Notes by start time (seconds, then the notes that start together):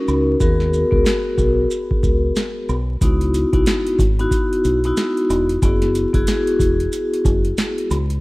Already playing: C#4 D#4 F#4 A#4
0.08 C#2, high woodblock, maracas
0.40 D#2 B3 F#4 G#4 A#4, kick, maracas
0.60 snare
0.73 maracas
0.91 C#2 B3 F#4 G#4 A#4, kick
1.05 B3 F#4 G#4 A#4, snare, maracas
1.38 B1, kick, maracas
1.71 maracas
1.91 kick
2.03 C#2, kick, maracas
2.36 snare, maracas
2.69 B1, high woodblock, maracas
3.01 C#2 B3 D#4 E4 F#4, kick, closed hi-hat, maracas
3.21 closed hi-hat
3.34 closed hi-hat, maracas
3.53 B1 B3 D#4 E4 F#4, kick, closed hi-hat
3.66 snare, closed hi-hat, maracas
3.87 closed hi-hat
3.99 G#1, kick, closed hi-hat, maracas
4.19 B3 D#4 E4 F#4, closed hi-hat
4.31 kick, closed hi-hat, maracas
4.53 closed hi-hat
4.65 B1, closed hi-hat, maracas
4.84 B3 D#4 E4 F#4, closed hi-hat
4.97 snare, closed hi-hat, maracas
5.17 closed hi-hat
5.30 E1, closed hi-hat, high woodblock, maracas
5.49 closed hi-hat
5.62 F#1 B3 E4 F#4 G#4, kick, closed hi-hat, maracas
5.82 snare, closed hi-hat
5.95 closed hi-hat, maracas
6.13 F#1 B3 E4 F#4 G#4, kick, closed hi-hat
6.27 B3 E4 F#4 G#4, snare, closed hi-hat, maracas
6.47 closed hi-hat
6.60 E1, kick, closed hi-hat, maracas
6.80 closed hi-hat
6.93 closed hi-hat, maracas
7.14 closed hi-hat
7.25 F#1, kick, closed hi-hat, maracas
7.45 closed hi-hat
7.58 snare, closed hi-hat, maracas
7.78 closed hi-hat
7.91 C#2, closed hi-hat, high woodblock, maracas
8.10 closed hi-hat